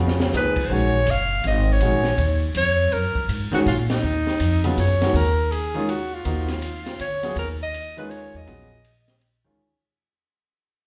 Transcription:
Already playing: F2 C#3 B3 F4 F#4
0.08 snare
0.20 snare
0.32 C#2 F3 A#3 D#4 G#4, snare, hi-hat pedal
0.37 B4
0.56 kick, crash
0.67 A#1 D#3 G#3 C#4 C5
0.71 F#4 C#5
1.06 F#1, hi-hat pedal, ride
1.11 F5
1.44 G#1 D#5, ride
1.72 C#5
1.80 A#1 D#3 G#3 C#4 F#4, ride
2.04 snare
2.18 D#2, ride
2.55 F2 C#5, hi-hat pedal, ride
2.92 F#2 A#4, ride
3.15 muted upright bass stroke, kick
3.29 G#2, hi-hat pedal, ride
3.52 D#3 G#3 C#4 F#4, muted upright bass stroke, snare, ride
3.66 A#2 F4, ride
3.90 D#4, snare, ride
4.03 D#2
4.27 snare
4.40 F2, hi-hat pedal, ride
4.64 C#3 F#3 B3 F4, ride
4.77 F#2 C#5, hi-hat pedal, ride
5.01 D#3 G#3 C#4 F#4, snare, ride
5.14 D#2 A#4, ride
5.52 G#4, hi-hat pedal, ride
5.74 D#3 G#3 C#4 F4
5.89 F#4, ride
6.14 F4
6.25 D#2 F3 A#3 D#4 F#4, ride
6.48 snare, ride
6.62 hi-hat pedal, ride
6.86 snare, ride
6.99 D2 C#5, hi-hat pedal, ride
7.23 F#3 B3 F4 G#4, snare, ride
7.36 D#2 A#4, ride
7.63 D#5
7.74 hi-hat pedal, ride
7.97 D#3 G#3 C#4 F4 B4, ride
8.11 C#5, ride
8.34 E2 D#5
8.46 A#1 F#3 B3 F4 G#4, ride
8.84 hi-hat pedal, ride
9.08 snare, ride
9.21 ride
9.44 D#3 G#3 C#4 F4

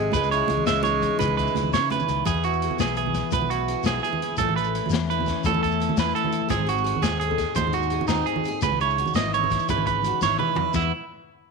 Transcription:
Already playing: G#1 C3 G#3 C4 G#4
0.06 low conga
0.12 C#2 C#3 G#3 B4, kick, closed hi-hat, high conga, low conga, shekere
0.23 shekere
0.30 E4 C#5, closed hi-hat, low conga
0.48 C#2, closed hi-hat, high conga
0.57 low conga
0.66 C#2 E3 E5, snare, closed hi-hat, shekere
0.76 shekere
0.83 D#4 C#5, closed hi-hat, high conga, shekere
1.02 kick, closed hi-hat, shekere
1.11 low conga
1.19 C#2 C#3 B4, kick, closed hi-hat, high conga, shekere
1.28 low conga
1.37 E4 B4, kick, closed hi-hat, low conga
1.47 shekere
1.55 C#2 E4, closed hi-hat, high conga, low conga, shekere
1.63 low conga
1.73 C#3 C#5, muted steel-string acoustic guitar stroke, snare, closed hi-hat, low conga, shekere
1.90 C#3 B4, closed hi-hat, high conga
1.99 low conga, shekere
2.08 C#2 D#3, closed hi-hat, low conga, shekere
2.26 E2 B3 G#4, kick, closed hi-hat, high conga, shekere
2.34 low conga
2.43 E4 F#4, closed hi-hat
2.53 shekere
2.62 G#4, closed hi-hat
2.71 low conga
2.79 B1 E3 E4 G#4, snare, closed hi-hat, high conga, low conga, shekere
2.97 G#4, muted steel-string acoustic guitar stroke, closed hi-hat
3.06 low conga
3.14 E4, kick, snare, closed hi-hat, shekere
3.32 B1 B4, muted steel-string acoustic guitar stroke, kick, closed hi-hat, high conga, shekere
3.36 B3
3.41 low conga
3.50 E4 F#4, closed hi-hat
3.68 G#4, closed hi-hat, low conga
3.84 B1 E3 E4 G#4, snare, closed hi-hat, high conga, low conga, shekere
4.03 G#4, closed hi-hat
4.13 low conga
4.22 E4, closed hi-hat
4.32 low conga
4.37 A1 A3 A4, muted steel-string acoustic guitar stroke, kick, closed hi-hat, high conga, shekere
4.49 low conga
4.56 C#4 B4, closed hi-hat, low conga
4.64 low conga, shekere
4.75 E4, closed hi-hat
4.86 low conga, shekere
4.91 E2 E3 C#4, snare, closed hi-hat, high conga, low conga
5.10 E4 B4, closed hi-hat
5.20 low conga
5.26 C#4, kick, snare, closed hi-hat, shekere
5.44 E2 A2 A3 A4, kick, closed hi-hat, high conga, shekere
5.54 low conga
5.63 C#4 A4, kick, closed hi-hat
5.71 shekere
5.80 E4, closed hi-hat, low conga
5.89 low conga
5.97 E2 E3 C#4 B4, snare, closed hi-hat, high conga, low conga, shekere
6.15 E4 A4, closed hi-hat
6.24 low conga
6.32 muted steel-string acoustic guitar stroke, closed hi-hat, shekere
6.42 low conga
6.49 G#1 G#2 C4 D#4 G#4, kick, closed hi-hat, high conga, shekere
6.59 low conga
6.66 F#4 G#4, closed hi-hat
6.77 low conga, shekere
6.84 G#4, closed hi-hat
6.96 low conga
7.02 D#2 C4 G#4, snare, closed hi-hat, high conga, low conga, shekere
7.20 G#4 A4, closed hi-hat
7.31 low conga
7.38 G#4, kick, snare, closed hi-hat, shekere
7.55 D#2 G#2 D#4 C5, kick, closed hi-hat, high conga, shekere
7.67 low conga
7.73 F#4 G#4, closed hi-hat
7.82 shekere
7.90 G#4, closed hi-hat, low conga
8.01 low conga
8.08 D#2 C4 D#4 G#4, snare, closed hi-hat, high conga, low conga, shekere
8.26 G#4, closed hi-hat
8.36 low conga
8.44 closed hi-hat, shekere
8.48 G#4
8.54 low conga
8.61 C#2 C#3 D#4 B4, kick, closed hi-hat, high conga, shekere
8.72 low conga
8.81 E4 C#5, closed hi-hat
8.90 shekere
8.98 F#4, closed hi-hat, low conga
9.06 low conga, shekere
9.14 G#1 E3 E4 D#5, snare, closed hi-hat, high conga, shekere
9.26 low conga
9.33 E4 C#5, closed hi-hat, low conga, shekere
9.44 low conga
9.50 E4, kick, snare, closed hi-hat, low conga, shekere
9.59 low conga, shekere
9.69 G#1 C#3 D#4 B4, kick, closed hi-hat, high conga, low conga, shekere
9.78 low conga
9.86 B4, kick, closed hi-hat, low conga, shekere
10.03 F#4, closed hi-hat, high conga, shekere
10.21 G#1 E3 E4 C#5, snare, high conga, shekere
10.39 E4 B4, mid tom, low conga
10.55 E4, floor tom, low conga
10.74 E2 E3 B3 E4, muted steel-string acoustic guitar stroke, kick, crash, high conga, shekere

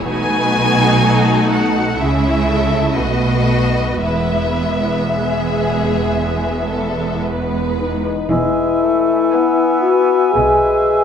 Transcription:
0.08 B1 B2 A3 D#4 F#4 B4 G#5
1.02 A4
1.51 F#5
1.97 C#2 C#3 G#3 E4 G#4 E5
2.49 A4
2.96 B1 B2 A3 B3 F#4 B4 D#5
4.01 E1 E2 G#3 B3 E4 B4 E5
5.11 G#4
6.69 B3 A4
7.23 B4
7.79 D#4
8.29 E1 E2 G#3 E4 B4 E5 G#5
8.83 A3
9.34 B3 B4 G#5
9.82 F#4
10.33 B1 B2 G#4
10.37 G#3

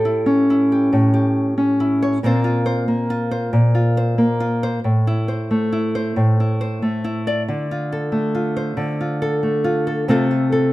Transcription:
Already playing: A2 G4 A4
0.05 E4
0.26 C#4
0.50 E4
0.72 G4
0.93 A2
1.14 G4
1.58 C#4
1.80 E4
2.02 C#5
2.23 A#2 A#3 C4 F4 C5
2.44 F4
2.66 C5
2.88 A#3
3.10 F4
3.31 C5
3.53 A#2
3.75 F4
3.97 C5
4.18 A#3
4.40 F4
4.63 C5
4.84 A2
5.07 E4
5.28 C5
5.51 A3
5.73 E4
5.95 C5
6.16 A2
6.40 E4
6.61 C5
6.82 A3
7.04 E4
7.27 D5
7.48 D3
7.71 F4
7.92 A4
8.12 A3
8.35 F4
8.57 C5
8.77 D3
9.01 F4
9.22 A4
9.43 A3
9.64 F4
9.87 A4
10.08 C3 A3 C4 F4 A4
10.31 F4
10.52 A4

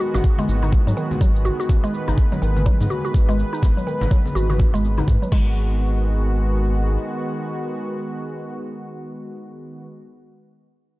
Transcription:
Already playing: D#3 G#3 B3 F#4
0.00 F#4, cabasa
0.14 G#1 F#4, high conga, low conga, cabasa
0.24 kick, cabasa
0.38 G#3, high conga, cabasa
0.48 G#1, cabasa
0.62 D#4, high conga, cabasa
0.72 kick, low conga, cabasa
0.87 G#2 F#3, cabasa
0.97 D#3, cabasa
1.11 high conga, low conga, cabasa
1.21 G#1 F#3, kick, cabasa
1.36 cabasa
1.45 F#4, high conga, cabasa
1.60 F#4, cabasa
1.69 G#1 B4, kick, low conga, cabasa
1.84 G#3, cabasa
1.94 cabasa
2.08 G#1 D#4, high conga, low conga, cabasa
2.18 kick, cabasa
2.32 F#3, high conga, cabasa
2.42 G#1 D#3, cabasa
2.57 high conga, cabasa
2.66 F#3, kick, cabasa
2.80 G#2, high conga, low conga, cabasa
2.90 F#4, high conga, cabasa
3.05 F#4, cabasa
3.14 G#1, kick, cabasa
3.29 G#3, cabasa
3.39 cabasa
3.53 D#4, cabasa
3.62 G#1, kick, low conga, cabasa
3.77 F#3, cabasa
3.87 D#3, cabasa
4.01 G#1, high conga, low conga, cabasa
4.11 F#3, kick, cabasa
4.26 high conga, cabasa
4.35 G#1 F#4, cabasa
4.50 F#4, high conga, cabasa
4.59 kick, low conga, cabasa
4.74 G#1 G#3, cabasa
4.85 cabasa
4.97 D#4, high conga, low conga, cabasa
5.08 G#2, kick, cabasa
5.22 F#3, cabasa
5.32 G#1 D#3 G#3 B3 F#4, kick, crash, high conga

